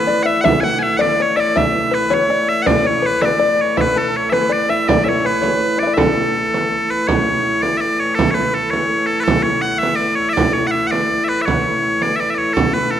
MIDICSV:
0, 0, Header, 1, 5, 480
1, 0, Start_track
1, 0, Key_signature, 3, "major"
1, 0, Tempo, 369004
1, 580, Time_signature, 6, 3, 24, 8
1, 8737, Tempo, 365408
1, 16990, End_track
2, 0, Start_track
2, 0, Title_t, "Bagpipes"
2, 0, Program_c, 0, 109
2, 0, Note_on_c, 0, 71, 86
2, 298, Note_off_c, 0, 71, 0
2, 298, Note_on_c, 0, 78, 97
2, 340, Note_off_c, 0, 78, 0
2, 340, Note_on_c, 0, 76, 97
2, 533, Note_off_c, 0, 76, 0
2, 533, Note_on_c, 0, 78, 95
2, 581, Note_off_c, 0, 78, 0
2, 581, Note_on_c, 0, 76, 95
2, 786, Note_off_c, 0, 76, 0
2, 787, Note_on_c, 0, 80, 91
2, 829, Note_on_c, 0, 78, 91
2, 830, Note_off_c, 0, 80, 0
2, 1027, Note_off_c, 0, 78, 0
2, 1027, Note_on_c, 0, 80, 89
2, 1075, Note_off_c, 0, 80, 0
2, 1075, Note_on_c, 0, 76, 89
2, 1263, Note_off_c, 0, 76, 0
2, 1263, Note_on_c, 0, 78, 93
2, 1315, Note_off_c, 0, 78, 0
2, 1315, Note_on_c, 0, 74, 93
2, 1582, Note_off_c, 0, 74, 0
2, 1582, Note_on_c, 0, 73, 93
2, 1769, Note_off_c, 0, 73, 0
2, 1769, Note_on_c, 0, 76, 92
2, 1823, Note_off_c, 0, 76, 0
2, 1823, Note_on_c, 0, 74, 92
2, 2047, Note_off_c, 0, 74, 0
2, 2047, Note_on_c, 0, 76, 88
2, 2526, Note_off_c, 0, 76, 0
2, 2526, Note_on_c, 0, 71, 73
2, 2781, Note_off_c, 0, 71, 0
2, 2781, Note_on_c, 0, 73, 93
2, 3232, Note_off_c, 0, 73, 0
2, 3232, Note_on_c, 0, 76, 91
2, 3412, Note_off_c, 0, 76, 0
2, 3412, Note_on_c, 0, 78, 86
2, 3468, Note_off_c, 0, 78, 0
2, 3468, Note_on_c, 0, 74, 86
2, 3724, Note_off_c, 0, 74, 0
2, 3724, Note_on_c, 0, 73, 84
2, 3983, Note_off_c, 0, 73, 0
2, 3983, Note_on_c, 0, 71, 81
2, 4184, Note_off_c, 0, 71, 0
2, 4184, Note_on_c, 0, 76, 83
2, 4232, Note_off_c, 0, 76, 0
2, 4232, Note_on_c, 0, 74, 83
2, 4693, Note_off_c, 0, 74, 0
2, 4693, Note_on_c, 0, 73, 74
2, 4906, Note_off_c, 0, 73, 0
2, 4906, Note_on_c, 0, 76, 83
2, 4955, Note_off_c, 0, 76, 0
2, 4955, Note_on_c, 0, 71, 83
2, 5178, Note_off_c, 0, 71, 0
2, 5178, Note_on_c, 0, 69, 80
2, 5420, Note_off_c, 0, 69, 0
2, 5420, Note_on_c, 0, 73, 80
2, 5587, Note_off_c, 0, 73, 0
2, 5587, Note_on_c, 0, 76, 78
2, 5631, Note_off_c, 0, 76, 0
2, 5631, Note_on_c, 0, 71, 78
2, 5882, Note_off_c, 0, 71, 0
2, 5882, Note_on_c, 0, 74, 85
2, 6110, Note_off_c, 0, 74, 0
2, 6110, Note_on_c, 0, 76, 85
2, 6351, Note_off_c, 0, 76, 0
2, 6351, Note_on_c, 0, 74, 88
2, 6560, Note_off_c, 0, 74, 0
2, 6560, Note_on_c, 0, 76, 82
2, 6614, Note_off_c, 0, 76, 0
2, 6614, Note_on_c, 0, 73, 82
2, 6843, Note_off_c, 0, 73, 0
2, 6843, Note_on_c, 0, 71, 78
2, 7531, Note_off_c, 0, 71, 0
2, 7531, Note_on_c, 0, 74, 78
2, 7725, Note_off_c, 0, 74, 0
2, 7725, Note_on_c, 0, 76, 69
2, 7784, Note_off_c, 0, 76, 0
2, 7784, Note_on_c, 0, 69, 69
2, 8985, Note_off_c, 0, 69, 0
2, 8985, Note_on_c, 0, 71, 70
2, 9208, Note_off_c, 0, 71, 0
2, 9208, Note_on_c, 0, 73, 88
2, 9921, Note_off_c, 0, 73, 0
2, 9921, Note_on_c, 0, 74, 89
2, 10125, Note_off_c, 0, 74, 0
2, 10125, Note_on_c, 0, 76, 87
2, 10170, Note_off_c, 0, 76, 0
2, 10170, Note_on_c, 0, 74, 87
2, 10414, Note_off_c, 0, 74, 0
2, 10414, Note_on_c, 0, 73, 75
2, 10620, Note_off_c, 0, 73, 0
2, 10620, Note_on_c, 0, 69, 92
2, 10831, Note_off_c, 0, 69, 0
2, 10831, Note_on_c, 0, 73, 77
2, 10875, Note_off_c, 0, 73, 0
2, 10875, Note_on_c, 0, 71, 77
2, 11137, Note_off_c, 0, 71, 0
2, 11137, Note_on_c, 0, 69, 72
2, 11349, Note_off_c, 0, 69, 0
2, 11349, Note_on_c, 0, 73, 89
2, 11821, Note_off_c, 0, 73, 0
2, 11821, Note_on_c, 0, 69, 80
2, 12005, Note_off_c, 0, 69, 0
2, 12005, Note_on_c, 0, 71, 92
2, 12049, Note_off_c, 0, 71, 0
2, 12049, Note_on_c, 0, 69, 92
2, 12300, Note_off_c, 0, 69, 0
2, 12300, Note_on_c, 0, 73, 98
2, 12543, Note_off_c, 0, 73, 0
2, 12543, Note_on_c, 0, 78, 86
2, 12767, Note_off_c, 0, 78, 0
2, 12767, Note_on_c, 0, 76, 102
2, 12994, Note_off_c, 0, 76, 0
2, 12994, Note_on_c, 0, 74, 91
2, 13247, Note_off_c, 0, 74, 0
2, 13247, Note_on_c, 0, 73, 97
2, 13432, Note_off_c, 0, 73, 0
2, 13432, Note_on_c, 0, 76, 102
2, 13488, Note_off_c, 0, 76, 0
2, 13488, Note_on_c, 0, 74, 102
2, 13745, Note_off_c, 0, 74, 0
2, 13745, Note_on_c, 0, 73, 88
2, 13928, Note_off_c, 0, 73, 0
2, 13928, Note_on_c, 0, 78, 84
2, 13984, Note_off_c, 0, 78, 0
2, 13984, Note_on_c, 0, 76, 84
2, 14193, Note_off_c, 0, 76, 0
2, 14193, Note_on_c, 0, 78, 90
2, 14247, Note_off_c, 0, 78, 0
2, 14247, Note_on_c, 0, 74, 90
2, 14681, Note_off_c, 0, 74, 0
2, 14681, Note_on_c, 0, 76, 80
2, 14739, Note_off_c, 0, 76, 0
2, 14739, Note_on_c, 0, 71, 80
2, 14910, Note_off_c, 0, 71, 0
2, 14910, Note_on_c, 0, 76, 88
2, 14958, Note_off_c, 0, 76, 0
2, 14958, Note_on_c, 0, 73, 88
2, 15705, Note_off_c, 0, 73, 0
2, 15705, Note_on_c, 0, 74, 93
2, 15888, Note_off_c, 0, 74, 0
2, 15888, Note_on_c, 0, 76, 82
2, 15943, Note_off_c, 0, 76, 0
2, 15943, Note_on_c, 0, 74, 82
2, 16075, Note_off_c, 0, 74, 0
2, 16075, Note_on_c, 0, 76, 63
2, 16133, Note_off_c, 0, 76, 0
2, 16133, Note_on_c, 0, 74, 63
2, 16164, Note_off_c, 0, 74, 0
2, 16164, Note_on_c, 0, 73, 83
2, 16380, Note_off_c, 0, 73, 0
2, 16380, Note_on_c, 0, 69, 81
2, 16647, Note_off_c, 0, 69, 0
2, 16647, Note_on_c, 0, 71, 78
2, 16873, Note_off_c, 0, 71, 0
2, 16873, Note_on_c, 0, 69, 70
2, 16990, Note_off_c, 0, 69, 0
2, 16990, End_track
3, 0, Start_track
3, 0, Title_t, "Five-string banjo"
3, 0, Program_c, 1, 105
3, 94, Note_on_c, 1, 74, 71
3, 320, Note_off_c, 1, 74, 0
3, 331, Note_on_c, 1, 76, 76
3, 557, Note_off_c, 1, 76, 0
3, 572, Note_on_c, 1, 76, 87
3, 815, Note_off_c, 1, 76, 0
3, 820, Note_on_c, 1, 78, 88
3, 1280, Note_off_c, 1, 78, 0
3, 1285, Note_on_c, 1, 74, 80
3, 1542, Note_off_c, 1, 74, 0
3, 1560, Note_on_c, 1, 73, 69
3, 1774, Note_off_c, 1, 73, 0
3, 1780, Note_on_c, 1, 74, 79
3, 2020, Note_off_c, 1, 74, 0
3, 2025, Note_on_c, 1, 76, 91
3, 2472, Note_off_c, 1, 76, 0
3, 2487, Note_on_c, 1, 71, 68
3, 2719, Note_off_c, 1, 71, 0
3, 2733, Note_on_c, 1, 73, 78
3, 2962, Note_off_c, 1, 73, 0
3, 2990, Note_on_c, 1, 74, 68
3, 3434, Note_off_c, 1, 74, 0
3, 3463, Note_on_c, 1, 74, 74
3, 3691, Note_off_c, 1, 74, 0
3, 3696, Note_on_c, 1, 73, 64
3, 3762, Note_off_c, 1, 73, 0
3, 3930, Note_on_c, 1, 71, 68
3, 4160, Note_off_c, 1, 71, 0
3, 4188, Note_on_c, 1, 74, 81
3, 4398, Note_off_c, 1, 74, 0
3, 4414, Note_on_c, 1, 74, 72
3, 4898, Note_off_c, 1, 74, 0
3, 4904, Note_on_c, 1, 71, 74
3, 5152, Note_off_c, 1, 71, 0
3, 5152, Note_on_c, 1, 69, 72
3, 5595, Note_off_c, 1, 69, 0
3, 5620, Note_on_c, 1, 71, 79
3, 5841, Note_off_c, 1, 71, 0
3, 5846, Note_on_c, 1, 74, 64
3, 6100, Note_off_c, 1, 74, 0
3, 6105, Note_on_c, 1, 76, 67
3, 6327, Note_off_c, 1, 76, 0
3, 6373, Note_on_c, 1, 74, 72
3, 6571, Note_off_c, 1, 74, 0
3, 6577, Note_on_c, 1, 73, 71
3, 6824, Note_on_c, 1, 71, 70
3, 6827, Note_off_c, 1, 73, 0
3, 7044, Note_on_c, 1, 73, 72
3, 7046, Note_off_c, 1, 71, 0
3, 7275, Note_off_c, 1, 73, 0
3, 7515, Note_on_c, 1, 74, 64
3, 7575, Note_off_c, 1, 74, 0
3, 7580, Note_on_c, 1, 76, 53
3, 7632, Note_off_c, 1, 76, 0
3, 7638, Note_on_c, 1, 74, 66
3, 7764, Note_on_c, 1, 69, 64
3, 7772, Note_off_c, 1, 74, 0
3, 8676, Note_off_c, 1, 69, 0
3, 16990, End_track
4, 0, Start_track
4, 0, Title_t, "Hurdy-gurdy"
4, 0, Program_c, 2, 110
4, 0, Note_on_c, 2, 45, 57
4, 0, Note_on_c, 2, 52, 59
4, 3463, Note_off_c, 2, 45, 0
4, 3463, Note_on_c, 2, 45, 58
4, 3465, Note_off_c, 2, 52, 0
4, 3465, Note_on_c, 2, 52, 65
4, 9222, Note_off_c, 2, 45, 0
4, 9222, Note_on_c, 2, 45, 62
4, 9224, Note_off_c, 2, 52, 0
4, 9224, Note_on_c, 2, 52, 58
4, 14994, Note_off_c, 2, 45, 0
4, 14994, Note_on_c, 2, 45, 61
4, 14999, Note_off_c, 2, 52, 0
4, 14999, Note_on_c, 2, 52, 52
4, 16990, Note_off_c, 2, 45, 0
4, 16990, Note_off_c, 2, 52, 0
4, 16990, End_track
5, 0, Start_track
5, 0, Title_t, "Frame drum"
5, 359, Note_on_c, 9, 64, 24
5, 489, Note_off_c, 9, 64, 0
5, 590, Note_on_c, 9, 64, 81
5, 720, Note_off_c, 9, 64, 0
5, 848, Note_on_c, 9, 64, 24
5, 978, Note_off_c, 9, 64, 0
5, 1321, Note_on_c, 9, 64, 64
5, 1451, Note_off_c, 9, 64, 0
5, 1796, Note_on_c, 9, 64, 25
5, 1926, Note_off_c, 9, 64, 0
5, 2039, Note_on_c, 9, 64, 73
5, 2169, Note_off_c, 9, 64, 0
5, 2749, Note_on_c, 9, 64, 59
5, 2879, Note_off_c, 9, 64, 0
5, 3469, Note_on_c, 9, 64, 91
5, 3599, Note_off_c, 9, 64, 0
5, 3708, Note_on_c, 9, 64, 26
5, 3838, Note_off_c, 9, 64, 0
5, 4185, Note_on_c, 9, 64, 65
5, 4315, Note_off_c, 9, 64, 0
5, 4669, Note_on_c, 9, 64, 23
5, 4799, Note_off_c, 9, 64, 0
5, 4908, Note_on_c, 9, 64, 73
5, 5038, Note_off_c, 9, 64, 0
5, 5152, Note_on_c, 9, 64, 23
5, 5282, Note_off_c, 9, 64, 0
5, 5633, Note_on_c, 9, 64, 58
5, 5763, Note_off_c, 9, 64, 0
5, 6115, Note_on_c, 9, 64, 26
5, 6245, Note_off_c, 9, 64, 0
5, 6358, Note_on_c, 9, 64, 91
5, 6488, Note_off_c, 9, 64, 0
5, 6599, Note_on_c, 9, 64, 28
5, 6729, Note_off_c, 9, 64, 0
5, 7068, Note_on_c, 9, 64, 62
5, 7198, Note_off_c, 9, 64, 0
5, 7540, Note_on_c, 9, 64, 22
5, 7670, Note_off_c, 9, 64, 0
5, 7772, Note_on_c, 9, 64, 89
5, 7902, Note_off_c, 9, 64, 0
5, 8512, Note_on_c, 9, 64, 61
5, 8642, Note_off_c, 9, 64, 0
5, 8744, Note_on_c, 9, 64, 22
5, 8875, Note_off_c, 9, 64, 0
5, 8984, Note_on_c, 9, 64, 23
5, 9116, Note_off_c, 9, 64, 0
5, 9221, Note_on_c, 9, 64, 86
5, 9352, Note_off_c, 9, 64, 0
5, 9938, Note_on_c, 9, 64, 58
5, 10069, Note_off_c, 9, 64, 0
5, 10427, Note_on_c, 9, 64, 26
5, 10558, Note_off_c, 9, 64, 0
5, 10670, Note_on_c, 9, 64, 86
5, 10801, Note_off_c, 9, 64, 0
5, 11386, Note_on_c, 9, 64, 60
5, 11518, Note_off_c, 9, 64, 0
5, 11866, Note_on_c, 9, 64, 24
5, 11997, Note_off_c, 9, 64, 0
5, 12099, Note_on_c, 9, 64, 92
5, 12231, Note_off_c, 9, 64, 0
5, 12828, Note_on_c, 9, 64, 64
5, 12960, Note_off_c, 9, 64, 0
5, 13301, Note_on_c, 9, 64, 27
5, 13433, Note_off_c, 9, 64, 0
5, 13538, Note_on_c, 9, 64, 91
5, 13670, Note_off_c, 9, 64, 0
5, 14265, Note_on_c, 9, 64, 65
5, 14396, Note_off_c, 9, 64, 0
5, 14514, Note_on_c, 9, 64, 21
5, 14646, Note_off_c, 9, 64, 0
5, 14755, Note_on_c, 9, 64, 24
5, 14887, Note_off_c, 9, 64, 0
5, 14990, Note_on_c, 9, 64, 77
5, 15122, Note_off_c, 9, 64, 0
5, 15699, Note_on_c, 9, 64, 60
5, 15831, Note_off_c, 9, 64, 0
5, 16176, Note_on_c, 9, 64, 27
5, 16307, Note_off_c, 9, 64, 0
5, 16423, Note_on_c, 9, 64, 84
5, 16555, Note_off_c, 9, 64, 0
5, 16990, End_track
0, 0, End_of_file